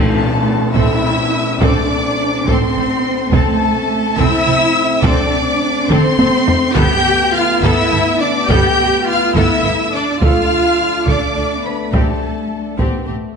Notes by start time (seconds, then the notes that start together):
Already playing: A2 A3 C4 A4 A5
0.76 A1 C4 E4 A4 E5 E6, taiko
1.04 A1 C4 A4
1.61 A1 C4 D4 A4 D5 D6, taiko
2.47 A1 C4 A4 C5 C6, taiko
2.76 A1 C4 A4
3.31 F1 A3 C4 A4 A5, taiko
4.18 F1 C4 E4 A4 E5 E6, taiko
4.46 F1 C4 A4
5.03 F1 C4 D4 A4 D5 D6, taiko
5.89 F1 C4 A4 C5 C6, taiko mid
6.18 F1 C4 A4, taiko high
6.48 taiko low
6.74 G1 A3 B3 G4 A4 G5 G6, taiko
7.34 F4 F5 F6
7.63 G1 B3 E4 A4 E5 E6, taiko
7.92 G1 B3 A4
8.20 D4 D5 D6
8.49 G1 B3 G4 A4 G5 G6, taiko
9.07 F4 F5 F6
9.35 G1 B3 E4 A4 E5 E6, taiko
9.64 G1 B3 A4
9.93 D4 D5 D6
10.21 D2 A3 D4 F4 A4 F5 F6, taiko
11.07 D2 A3 D4 A4 D5 D6, taiko
11.35 D2 A3 A4
11.65 B3 B4 B5
11.92 A1 A3 C4 G4 A4 A5, taiko
12.78 A1 B3 C4 G4, taiko
13.06 A1 A3 C4 G4